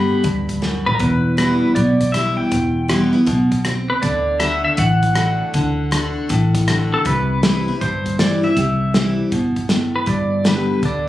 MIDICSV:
0, 0, Header, 1, 5, 480
1, 0, Start_track
1, 0, Tempo, 378072
1, 1266, Time_signature, 4, 2, 24, 8
1, 14075, End_track
2, 0, Start_track
2, 0, Title_t, "Pedal steel guitar"
2, 0, Program_c, 0, 26
2, 0, Note_on_c, 0, 83, 92
2, 1097, Note_on_c, 0, 71, 72
2, 1144, Note_off_c, 0, 83, 0
2, 1196, Note_off_c, 0, 71, 0
2, 1203, Note_on_c, 0, 70, 64
2, 1266, Note_off_c, 0, 70, 0
2, 1272, Note_on_c, 0, 71, 80
2, 1739, Note_off_c, 0, 71, 0
2, 1754, Note_on_c, 0, 71, 67
2, 2218, Note_off_c, 0, 71, 0
2, 2223, Note_on_c, 0, 74, 83
2, 2694, Note_on_c, 0, 76, 79
2, 2720, Note_off_c, 0, 74, 0
2, 3003, Note_off_c, 0, 76, 0
2, 3008, Note_on_c, 0, 79, 74
2, 3973, Note_off_c, 0, 79, 0
2, 4948, Note_on_c, 0, 71, 73
2, 5096, Note_off_c, 0, 71, 0
2, 5101, Note_on_c, 0, 74, 86
2, 5551, Note_off_c, 0, 74, 0
2, 5580, Note_on_c, 0, 76, 80
2, 5882, Note_off_c, 0, 76, 0
2, 5897, Note_on_c, 0, 76, 82
2, 6072, Note_off_c, 0, 76, 0
2, 6083, Note_on_c, 0, 78, 89
2, 8424, Note_off_c, 0, 78, 0
2, 8808, Note_on_c, 0, 69, 64
2, 8967, Note_off_c, 0, 69, 0
2, 8967, Note_on_c, 0, 71, 80
2, 9429, Note_off_c, 0, 71, 0
2, 9444, Note_on_c, 0, 71, 73
2, 9914, Note_off_c, 0, 71, 0
2, 9919, Note_on_c, 0, 72, 87
2, 10359, Note_off_c, 0, 72, 0
2, 10407, Note_on_c, 0, 74, 89
2, 10714, Note_on_c, 0, 76, 94
2, 10716, Note_off_c, 0, 74, 0
2, 11614, Note_off_c, 0, 76, 0
2, 12640, Note_on_c, 0, 71, 67
2, 12801, Note_off_c, 0, 71, 0
2, 12808, Note_on_c, 0, 74, 84
2, 13290, Note_off_c, 0, 74, 0
2, 13307, Note_on_c, 0, 71, 74
2, 13775, Note_off_c, 0, 71, 0
2, 13780, Note_on_c, 0, 74, 85
2, 14075, Note_off_c, 0, 74, 0
2, 14075, End_track
3, 0, Start_track
3, 0, Title_t, "Steel-string acoustic guitar"
3, 0, Program_c, 1, 25
3, 0, Note_on_c, 1, 43, 78
3, 0, Note_on_c, 1, 50, 51
3, 0, Note_on_c, 1, 55, 52
3, 0, Note_on_c, 1, 59, 57
3, 0, Note_on_c, 1, 67, 57
3, 271, Note_off_c, 1, 43, 0
3, 284, Note_off_c, 1, 50, 0
3, 289, Note_off_c, 1, 55, 0
3, 291, Note_off_c, 1, 59, 0
3, 296, Note_off_c, 1, 67, 0
3, 301, Note_on_c, 1, 43, 74
3, 767, Note_off_c, 1, 43, 0
3, 785, Note_on_c, 1, 42, 70
3, 1249, Note_off_c, 1, 42, 0
3, 1262, Note_on_c, 1, 40, 79
3, 1741, Note_on_c, 1, 52, 54
3, 1753, Note_on_c, 1, 55, 55
3, 1758, Note_on_c, 1, 64, 56
3, 1759, Note_on_c, 1, 59, 53
3, 2191, Note_off_c, 1, 40, 0
3, 2207, Note_off_c, 1, 52, 0
3, 2213, Note_off_c, 1, 55, 0
3, 2216, Note_off_c, 1, 59, 0
3, 2216, Note_off_c, 1, 64, 0
3, 2239, Note_on_c, 1, 47, 80
3, 2717, Note_on_c, 1, 52, 50
3, 2717, Note_on_c, 1, 55, 51
3, 2728, Note_on_c, 1, 59, 53
3, 2734, Note_on_c, 1, 64, 59
3, 3159, Note_off_c, 1, 47, 0
3, 3175, Note_off_c, 1, 52, 0
3, 3175, Note_off_c, 1, 55, 0
3, 3181, Note_off_c, 1, 59, 0
3, 3184, Note_off_c, 1, 64, 0
3, 3192, Note_on_c, 1, 40, 77
3, 3660, Note_on_c, 1, 52, 50
3, 3671, Note_on_c, 1, 55, 55
3, 3683, Note_on_c, 1, 59, 60
3, 3685, Note_on_c, 1, 64, 64
3, 3955, Note_off_c, 1, 64, 0
3, 3963, Note_off_c, 1, 52, 0
3, 3968, Note_off_c, 1, 55, 0
3, 3970, Note_on_c, 1, 64, 60
3, 3974, Note_off_c, 1, 59, 0
3, 3989, Note_on_c, 1, 59, 44
3, 4116, Note_off_c, 1, 40, 0
3, 4137, Note_off_c, 1, 64, 0
3, 4144, Note_on_c, 1, 47, 75
3, 4146, Note_off_c, 1, 59, 0
3, 4609, Note_off_c, 1, 47, 0
3, 4638, Note_on_c, 1, 60, 77
3, 5096, Note_off_c, 1, 60, 0
3, 5112, Note_on_c, 1, 50, 79
3, 5571, Note_off_c, 1, 50, 0
3, 5586, Note_on_c, 1, 50, 52
3, 5593, Note_on_c, 1, 57, 53
3, 5596, Note_on_c, 1, 62, 57
3, 5605, Note_on_c, 1, 66, 61
3, 6050, Note_off_c, 1, 50, 0
3, 6054, Note_off_c, 1, 57, 0
3, 6055, Note_off_c, 1, 62, 0
3, 6058, Note_on_c, 1, 45, 79
3, 6060, Note_off_c, 1, 66, 0
3, 6544, Note_on_c, 1, 50, 51
3, 6552, Note_on_c, 1, 57, 53
3, 6554, Note_on_c, 1, 62, 55
3, 6566, Note_on_c, 1, 66, 59
3, 6989, Note_off_c, 1, 45, 0
3, 7009, Note_off_c, 1, 50, 0
3, 7013, Note_off_c, 1, 57, 0
3, 7014, Note_off_c, 1, 62, 0
3, 7020, Note_off_c, 1, 66, 0
3, 7033, Note_on_c, 1, 50, 78
3, 7489, Note_off_c, 1, 50, 0
3, 7504, Note_on_c, 1, 50, 52
3, 7517, Note_on_c, 1, 57, 52
3, 7521, Note_on_c, 1, 62, 57
3, 7526, Note_on_c, 1, 66, 58
3, 7969, Note_off_c, 1, 50, 0
3, 7975, Note_off_c, 1, 57, 0
3, 7977, Note_off_c, 1, 62, 0
3, 7980, Note_off_c, 1, 66, 0
3, 7989, Note_on_c, 1, 45, 71
3, 8477, Note_on_c, 1, 50, 50
3, 8486, Note_on_c, 1, 57, 52
3, 8487, Note_on_c, 1, 62, 56
3, 8498, Note_on_c, 1, 66, 57
3, 8914, Note_off_c, 1, 45, 0
3, 8935, Note_off_c, 1, 50, 0
3, 8940, Note_off_c, 1, 57, 0
3, 8940, Note_off_c, 1, 62, 0
3, 8946, Note_off_c, 1, 66, 0
3, 8949, Note_on_c, 1, 48, 74
3, 9431, Note_on_c, 1, 52, 54
3, 9435, Note_on_c, 1, 55, 59
3, 9439, Note_on_c, 1, 60, 55
3, 9449, Note_on_c, 1, 64, 63
3, 9728, Note_off_c, 1, 52, 0
3, 9729, Note_off_c, 1, 55, 0
3, 9731, Note_off_c, 1, 60, 0
3, 9736, Note_off_c, 1, 64, 0
3, 9749, Note_on_c, 1, 64, 55
3, 9770, Note_on_c, 1, 60, 42
3, 9874, Note_off_c, 1, 48, 0
3, 9906, Note_off_c, 1, 64, 0
3, 9916, Note_off_c, 1, 60, 0
3, 9925, Note_on_c, 1, 43, 78
3, 10397, Note_on_c, 1, 52, 54
3, 10408, Note_on_c, 1, 55, 54
3, 10417, Note_on_c, 1, 60, 52
3, 10417, Note_on_c, 1, 64, 61
3, 10689, Note_off_c, 1, 64, 0
3, 10690, Note_off_c, 1, 52, 0
3, 10695, Note_off_c, 1, 55, 0
3, 10700, Note_off_c, 1, 60, 0
3, 10704, Note_on_c, 1, 64, 54
3, 10716, Note_on_c, 1, 60, 41
3, 10841, Note_off_c, 1, 43, 0
3, 10862, Note_off_c, 1, 64, 0
3, 10869, Note_off_c, 1, 60, 0
3, 10884, Note_on_c, 1, 48, 74
3, 11353, Note_on_c, 1, 52, 49
3, 11365, Note_on_c, 1, 55, 56
3, 11369, Note_on_c, 1, 60, 58
3, 11374, Note_on_c, 1, 64, 63
3, 11800, Note_off_c, 1, 48, 0
3, 11812, Note_off_c, 1, 52, 0
3, 11818, Note_off_c, 1, 55, 0
3, 11820, Note_off_c, 1, 60, 0
3, 11822, Note_off_c, 1, 64, 0
3, 11832, Note_on_c, 1, 47, 76
3, 12291, Note_off_c, 1, 47, 0
3, 12310, Note_on_c, 1, 45, 80
3, 12770, Note_off_c, 1, 45, 0
3, 12775, Note_on_c, 1, 43, 81
3, 13259, Note_on_c, 1, 50, 58
3, 13267, Note_on_c, 1, 55, 58
3, 13274, Note_on_c, 1, 59, 58
3, 13279, Note_on_c, 1, 67, 62
3, 13704, Note_off_c, 1, 43, 0
3, 13724, Note_off_c, 1, 50, 0
3, 13728, Note_off_c, 1, 55, 0
3, 13731, Note_off_c, 1, 59, 0
3, 13734, Note_off_c, 1, 67, 0
3, 13747, Note_on_c, 1, 50, 79
3, 14075, Note_off_c, 1, 50, 0
3, 14075, End_track
4, 0, Start_track
4, 0, Title_t, "Fingered electric bass"
4, 0, Program_c, 2, 33
4, 307, Note_on_c, 2, 38, 70
4, 1085, Note_off_c, 2, 38, 0
4, 1266, Note_on_c, 2, 28, 76
4, 2045, Note_off_c, 2, 28, 0
4, 2231, Note_on_c, 2, 35, 65
4, 3008, Note_off_c, 2, 35, 0
4, 3192, Note_on_c, 2, 28, 77
4, 3969, Note_off_c, 2, 28, 0
4, 4152, Note_on_c, 2, 35, 67
4, 4929, Note_off_c, 2, 35, 0
4, 5108, Note_on_c, 2, 38, 80
4, 5887, Note_off_c, 2, 38, 0
4, 6066, Note_on_c, 2, 33, 75
4, 6845, Note_off_c, 2, 33, 0
4, 7032, Note_on_c, 2, 38, 80
4, 7809, Note_off_c, 2, 38, 0
4, 7994, Note_on_c, 2, 33, 67
4, 8770, Note_off_c, 2, 33, 0
4, 8956, Note_on_c, 2, 36, 84
4, 9731, Note_off_c, 2, 36, 0
4, 9917, Note_on_c, 2, 31, 73
4, 10691, Note_off_c, 2, 31, 0
4, 10876, Note_on_c, 2, 36, 82
4, 11650, Note_off_c, 2, 36, 0
4, 11835, Note_on_c, 2, 31, 73
4, 12609, Note_off_c, 2, 31, 0
4, 12786, Note_on_c, 2, 31, 83
4, 13563, Note_off_c, 2, 31, 0
4, 13740, Note_on_c, 2, 38, 74
4, 14075, Note_off_c, 2, 38, 0
4, 14075, End_track
5, 0, Start_track
5, 0, Title_t, "Drums"
5, 304, Note_on_c, 9, 42, 49
5, 309, Note_on_c, 9, 36, 98
5, 431, Note_off_c, 9, 42, 0
5, 436, Note_off_c, 9, 36, 0
5, 622, Note_on_c, 9, 36, 65
5, 624, Note_on_c, 9, 42, 51
5, 749, Note_off_c, 9, 36, 0
5, 750, Note_off_c, 9, 42, 0
5, 793, Note_on_c, 9, 38, 55
5, 920, Note_off_c, 9, 38, 0
5, 1105, Note_on_c, 9, 43, 70
5, 1232, Note_off_c, 9, 43, 0
5, 1272, Note_on_c, 9, 42, 49
5, 1273, Note_on_c, 9, 36, 96
5, 1399, Note_off_c, 9, 42, 0
5, 1400, Note_off_c, 9, 36, 0
5, 1755, Note_on_c, 9, 37, 98
5, 1755, Note_on_c, 9, 42, 56
5, 1882, Note_off_c, 9, 37, 0
5, 1882, Note_off_c, 9, 42, 0
5, 2231, Note_on_c, 9, 42, 53
5, 2236, Note_on_c, 9, 36, 90
5, 2358, Note_off_c, 9, 42, 0
5, 2363, Note_off_c, 9, 36, 0
5, 2548, Note_on_c, 9, 36, 65
5, 2548, Note_on_c, 9, 42, 57
5, 2675, Note_off_c, 9, 36, 0
5, 2675, Note_off_c, 9, 42, 0
5, 2719, Note_on_c, 9, 37, 95
5, 2719, Note_on_c, 9, 42, 59
5, 2846, Note_off_c, 9, 37, 0
5, 2846, Note_off_c, 9, 42, 0
5, 3196, Note_on_c, 9, 42, 56
5, 3197, Note_on_c, 9, 36, 90
5, 3323, Note_off_c, 9, 42, 0
5, 3324, Note_off_c, 9, 36, 0
5, 3676, Note_on_c, 9, 37, 104
5, 3676, Note_on_c, 9, 42, 54
5, 3803, Note_off_c, 9, 37, 0
5, 3803, Note_off_c, 9, 42, 0
5, 4154, Note_on_c, 9, 42, 58
5, 4155, Note_on_c, 9, 36, 101
5, 4281, Note_off_c, 9, 42, 0
5, 4282, Note_off_c, 9, 36, 0
5, 4464, Note_on_c, 9, 42, 58
5, 4466, Note_on_c, 9, 36, 69
5, 4591, Note_off_c, 9, 42, 0
5, 4593, Note_off_c, 9, 36, 0
5, 4630, Note_on_c, 9, 37, 97
5, 4630, Note_on_c, 9, 42, 57
5, 4757, Note_off_c, 9, 37, 0
5, 4757, Note_off_c, 9, 42, 0
5, 5110, Note_on_c, 9, 42, 52
5, 5113, Note_on_c, 9, 36, 93
5, 5237, Note_off_c, 9, 42, 0
5, 5240, Note_off_c, 9, 36, 0
5, 5586, Note_on_c, 9, 37, 98
5, 5586, Note_on_c, 9, 42, 53
5, 5713, Note_off_c, 9, 37, 0
5, 5713, Note_off_c, 9, 42, 0
5, 6065, Note_on_c, 9, 42, 55
5, 6071, Note_on_c, 9, 36, 94
5, 6192, Note_off_c, 9, 42, 0
5, 6198, Note_off_c, 9, 36, 0
5, 6382, Note_on_c, 9, 42, 52
5, 6384, Note_on_c, 9, 36, 70
5, 6509, Note_off_c, 9, 42, 0
5, 6511, Note_off_c, 9, 36, 0
5, 6545, Note_on_c, 9, 37, 103
5, 6545, Note_on_c, 9, 42, 56
5, 6672, Note_off_c, 9, 37, 0
5, 6672, Note_off_c, 9, 42, 0
5, 7030, Note_on_c, 9, 42, 59
5, 7035, Note_on_c, 9, 36, 92
5, 7157, Note_off_c, 9, 42, 0
5, 7162, Note_off_c, 9, 36, 0
5, 7518, Note_on_c, 9, 37, 100
5, 7518, Note_on_c, 9, 42, 61
5, 7645, Note_off_c, 9, 37, 0
5, 7645, Note_off_c, 9, 42, 0
5, 7999, Note_on_c, 9, 36, 89
5, 8000, Note_on_c, 9, 42, 52
5, 8126, Note_off_c, 9, 36, 0
5, 8127, Note_off_c, 9, 42, 0
5, 8311, Note_on_c, 9, 36, 71
5, 8313, Note_on_c, 9, 42, 58
5, 8438, Note_off_c, 9, 36, 0
5, 8440, Note_off_c, 9, 42, 0
5, 8479, Note_on_c, 9, 37, 107
5, 8479, Note_on_c, 9, 42, 58
5, 8606, Note_off_c, 9, 37, 0
5, 8606, Note_off_c, 9, 42, 0
5, 8958, Note_on_c, 9, 42, 53
5, 8959, Note_on_c, 9, 36, 106
5, 9084, Note_off_c, 9, 42, 0
5, 9086, Note_off_c, 9, 36, 0
5, 9435, Note_on_c, 9, 38, 98
5, 9435, Note_on_c, 9, 42, 56
5, 9562, Note_off_c, 9, 38, 0
5, 9562, Note_off_c, 9, 42, 0
5, 9921, Note_on_c, 9, 36, 92
5, 9925, Note_on_c, 9, 42, 53
5, 10048, Note_off_c, 9, 36, 0
5, 10052, Note_off_c, 9, 42, 0
5, 10231, Note_on_c, 9, 36, 69
5, 10232, Note_on_c, 9, 42, 57
5, 10358, Note_off_c, 9, 36, 0
5, 10359, Note_off_c, 9, 42, 0
5, 10401, Note_on_c, 9, 38, 109
5, 10401, Note_on_c, 9, 42, 63
5, 10528, Note_off_c, 9, 38, 0
5, 10528, Note_off_c, 9, 42, 0
5, 10875, Note_on_c, 9, 42, 58
5, 10877, Note_on_c, 9, 36, 99
5, 11002, Note_off_c, 9, 42, 0
5, 11003, Note_off_c, 9, 36, 0
5, 11354, Note_on_c, 9, 38, 106
5, 11354, Note_on_c, 9, 42, 58
5, 11481, Note_off_c, 9, 38, 0
5, 11481, Note_off_c, 9, 42, 0
5, 11832, Note_on_c, 9, 42, 57
5, 11834, Note_on_c, 9, 36, 99
5, 11959, Note_off_c, 9, 42, 0
5, 11961, Note_off_c, 9, 36, 0
5, 12141, Note_on_c, 9, 42, 57
5, 12143, Note_on_c, 9, 36, 72
5, 12268, Note_off_c, 9, 42, 0
5, 12270, Note_off_c, 9, 36, 0
5, 12304, Note_on_c, 9, 38, 108
5, 12304, Note_on_c, 9, 42, 60
5, 12431, Note_off_c, 9, 38, 0
5, 12431, Note_off_c, 9, 42, 0
5, 12788, Note_on_c, 9, 36, 99
5, 12788, Note_on_c, 9, 42, 50
5, 12915, Note_off_c, 9, 36, 0
5, 12915, Note_off_c, 9, 42, 0
5, 13267, Note_on_c, 9, 38, 106
5, 13267, Note_on_c, 9, 42, 55
5, 13394, Note_off_c, 9, 38, 0
5, 13394, Note_off_c, 9, 42, 0
5, 13749, Note_on_c, 9, 36, 101
5, 13750, Note_on_c, 9, 42, 53
5, 13876, Note_off_c, 9, 36, 0
5, 13877, Note_off_c, 9, 42, 0
5, 14075, End_track
0, 0, End_of_file